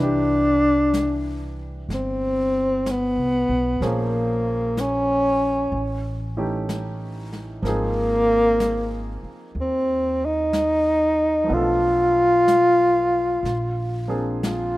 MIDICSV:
0, 0, Header, 1, 6, 480
1, 0, Start_track
1, 0, Tempo, 960000
1, 1908, Time_signature, 4, 2, 24, 8
1, 4783, Tempo, 972447
1, 7354, End_track
2, 0, Start_track
2, 0, Title_t, "Grand piano"
2, 0, Program_c, 0, 0
2, 0, Note_on_c, 0, 52, 47
2, 0, Note_on_c, 0, 64, 44
2, 0, Note_on_c, 0, 71, 45
2, 1, Note_on_c, 0, 62, 45
2, 16, Note_on_c, 0, 67, 51
2, 84, Control_c, 0, 64, 127
2, 1896, Note_off_c, 0, 52, 0
2, 1904, Note_off_c, 0, 71, 0
2, 1906, Note_on_c, 0, 53, 54
2, 1908, Note_on_c, 0, 58, 47
2, 1910, Note_off_c, 0, 64, 0
2, 1910, Note_on_c, 0, 72, 50
2, 1911, Note_on_c, 0, 61, 50
2, 1911, Note_on_c, 0, 68, 59
2, 1914, Control_c, 0, 64, 0
2, 1917, Note_off_c, 0, 62, 0
2, 1924, Note_off_c, 0, 67, 0
2, 2013, Control_c, 0, 64, 127
2, 2862, Note_off_c, 0, 53, 0
2, 2863, Note_off_c, 0, 58, 0
2, 2864, Note_off_c, 0, 72, 0
2, 2865, Note_off_c, 0, 61, 0
2, 2865, Note_off_c, 0, 68, 0
2, 2869, Control_c, 0, 64, 0
2, 2963, Control_c, 0, 64, 127
2, 3184, Note_on_c, 0, 52, 49
2, 3186, Note_on_c, 0, 57, 46
2, 3189, Note_on_c, 0, 61, 45
2, 3190, Note_on_c, 0, 63, 45
2, 3192, Note_on_c, 0, 67, 54
2, 3811, Note_on_c, 0, 53, 52
2, 3818, Note_on_c, 0, 58, 50
2, 3823, Note_off_c, 0, 52, 0
2, 3824, Note_off_c, 0, 57, 0
2, 3825, Note_off_c, 0, 63, 0
2, 3826, Note_off_c, 0, 61, 0
2, 3826, Control_c, 0, 64, 0
2, 3827, Note_off_c, 0, 67, 0
2, 3827, Note_on_c, 0, 60, 47
2, 3832, Note_on_c, 0, 63, 47
2, 3838, Note_on_c, 0, 68, 62
2, 3912, Control_c, 0, 64, 127
2, 5700, Note_off_c, 0, 53, 0
2, 5708, Note_on_c, 0, 53, 52
2, 5721, Note_on_c, 0, 57, 46
2, 5734, Note_off_c, 0, 58, 0
2, 5736, Note_on_c, 0, 59, 46
2, 5738, Note_off_c, 0, 60, 0
2, 5741, Note_off_c, 0, 63, 0
2, 5742, Control_c, 0, 64, 0
2, 5744, Note_off_c, 0, 68, 0
2, 5750, Note_on_c, 0, 62, 46
2, 5767, Note_on_c, 0, 69, 58
2, 5837, Control_c, 0, 64, 127
2, 6681, Note_off_c, 0, 53, 0
2, 6688, Note_off_c, 0, 57, 0
2, 6695, Note_off_c, 0, 59, 0
2, 6701, Control_c, 0, 64, 0
2, 6702, Note_off_c, 0, 62, 0
2, 6710, Note_off_c, 0, 69, 0
2, 6799, Control_c, 0, 64, 127
2, 7010, Note_on_c, 0, 58, 45
2, 7012, Note_on_c, 0, 53, 46
2, 7012, Note_on_c, 0, 60, 45
2, 7017, Note_on_c, 0, 62, 47
2, 7018, Note_on_c, 0, 68, 52
2, 7354, Note_off_c, 0, 53, 0
2, 7354, Note_off_c, 0, 58, 0
2, 7354, Note_off_c, 0, 60, 0
2, 7354, Note_off_c, 0, 62, 0
2, 7354, Note_off_c, 0, 68, 0
2, 7354, End_track
3, 0, Start_track
3, 0, Title_t, "Tenor saxophone"
3, 0, Program_c, 1, 66
3, 0, Note_on_c, 1, 62, 98
3, 791, Note_off_c, 1, 62, 0
3, 972, Note_on_c, 1, 60, 83
3, 1452, Note_on_c, 1, 59, 86
3, 1460, Note_off_c, 1, 60, 0
3, 1919, Note_off_c, 1, 59, 0
3, 1927, Note_on_c, 1, 58, 82
3, 2403, Note_on_c, 1, 61, 97
3, 2410, Note_off_c, 1, 58, 0
3, 3186, Note_off_c, 1, 61, 0
3, 3834, Note_on_c, 1, 58, 110
3, 4603, Note_off_c, 1, 58, 0
3, 4806, Note_on_c, 1, 60, 88
3, 5123, Note_on_c, 1, 63, 94
3, 5131, Note_off_c, 1, 60, 0
3, 5756, Note_on_c, 1, 65, 113
3, 5764, Note_off_c, 1, 63, 0
3, 7096, Note_off_c, 1, 65, 0
3, 7195, Note_on_c, 1, 65, 83
3, 7354, Note_off_c, 1, 65, 0
3, 7354, End_track
4, 0, Start_track
4, 0, Title_t, "Upright bass"
4, 0, Program_c, 2, 32
4, 0, Note_on_c, 2, 36, 72
4, 923, Note_off_c, 2, 36, 0
4, 943, Note_on_c, 2, 31, 66
4, 1566, Note_off_c, 2, 31, 0
4, 1583, Note_on_c, 2, 36, 55
4, 1734, Note_off_c, 2, 36, 0
4, 1745, Note_on_c, 2, 35, 66
4, 1895, Note_off_c, 2, 35, 0
4, 1903, Note_on_c, 2, 34, 78
4, 2840, Note_off_c, 2, 34, 0
4, 2859, Note_on_c, 2, 33, 75
4, 3798, Note_off_c, 2, 33, 0
4, 3813, Note_on_c, 2, 32, 81
4, 4593, Note_off_c, 2, 32, 0
4, 4775, Note_on_c, 2, 39, 71
4, 5712, Note_off_c, 2, 39, 0
4, 5737, Note_on_c, 2, 35, 76
4, 6676, Note_off_c, 2, 35, 0
4, 6689, Note_on_c, 2, 34, 72
4, 7354, Note_off_c, 2, 34, 0
4, 7354, End_track
5, 0, Start_track
5, 0, Title_t, "Muted upright bass strokes"
5, 4616, Note_on_c, 9, 29, 37
5, 4666, Note_off_c, 9, 29, 0
5, 7354, End_track
6, 0, Start_track
6, 0, Title_t, "Drums"
6, 468, Note_on_c, 9, 25, 31
6, 468, Note_on_c, 9, 38, 38
6, 468, Note_on_c, 9, 44, 53
6, 518, Note_off_c, 9, 38, 0
6, 518, Note_off_c, 9, 44, 0
6, 951, Note_off_c, 9, 25, 0
6, 951, Note_on_c, 9, 25, 30
6, 951, Note_on_c, 9, 38, 24
6, 1001, Note_off_c, 9, 38, 0
6, 1432, Note_off_c, 9, 25, 0
6, 1432, Note_on_c, 9, 25, 29
6, 1432, Note_on_c, 9, 38, 36
6, 1432, Note_on_c, 9, 44, 51
6, 1482, Note_off_c, 9, 38, 0
6, 1482, Note_off_c, 9, 44, 0
6, 1910, Note_off_c, 9, 25, 0
6, 1910, Note_on_c, 9, 25, 34
6, 1910, Note_on_c, 9, 38, 26
6, 1960, Note_off_c, 9, 38, 0
6, 2386, Note_off_c, 9, 25, 0
6, 2386, Note_on_c, 9, 25, 33
6, 2386, Note_on_c, 9, 38, 40
6, 2386, Note_on_c, 9, 44, 56
6, 2436, Note_off_c, 9, 38, 0
6, 2436, Note_off_c, 9, 44, 0
6, 2868, Note_off_c, 9, 25, 0
6, 2868, Note_on_c, 9, 25, 31
6, 3345, Note_off_c, 9, 25, 0
6, 3345, Note_on_c, 9, 25, 33
6, 3345, Note_on_c, 9, 38, 38
6, 3345, Note_on_c, 9, 44, 42
6, 3395, Note_off_c, 9, 38, 0
6, 3395, Note_off_c, 9, 44, 0
6, 3663, Note_on_c, 9, 38, 22
6, 3713, Note_off_c, 9, 38, 0
6, 3825, Note_off_c, 9, 25, 0
6, 3825, Note_on_c, 9, 25, 34
6, 3825, Note_on_c, 9, 38, 25
6, 3875, Note_off_c, 9, 38, 0
6, 4301, Note_off_c, 9, 25, 0
6, 4301, Note_on_c, 9, 25, 32
6, 4301, Note_on_c, 9, 38, 44
6, 4301, Note_on_c, 9, 44, 48
6, 4351, Note_off_c, 9, 38, 0
6, 4351, Note_off_c, 9, 44, 0
6, 4785, Note_off_c, 9, 25, 0
6, 4785, Note_on_c, 9, 25, 30
6, 5260, Note_off_c, 9, 25, 0
6, 5260, Note_on_c, 9, 25, 32
6, 5260, Note_on_c, 9, 38, 41
6, 5260, Note_on_c, 9, 44, 47
6, 5309, Note_off_c, 9, 38, 0
6, 5309, Note_off_c, 9, 44, 0
6, 5737, Note_off_c, 9, 25, 0
6, 5737, Note_on_c, 9, 25, 31
6, 6221, Note_off_c, 9, 25, 0
6, 6221, Note_on_c, 9, 25, 37
6, 6221, Note_on_c, 9, 38, 40
6, 6221, Note_on_c, 9, 44, 47
6, 6270, Note_off_c, 9, 38, 0
6, 6270, Note_off_c, 9, 44, 0
6, 6701, Note_off_c, 9, 25, 0
6, 6701, Note_on_c, 9, 25, 30
6, 6701, Note_on_c, 9, 38, 24
6, 6750, Note_off_c, 9, 38, 0
6, 7185, Note_off_c, 9, 25, 0
6, 7185, Note_on_c, 9, 25, 31
6, 7185, Note_on_c, 9, 38, 41
6, 7185, Note_on_c, 9, 44, 52
6, 7235, Note_off_c, 9, 38, 0
6, 7235, Note_off_c, 9, 44, 0
6, 7354, Note_off_c, 9, 25, 0
6, 7354, End_track
0, 0, End_of_file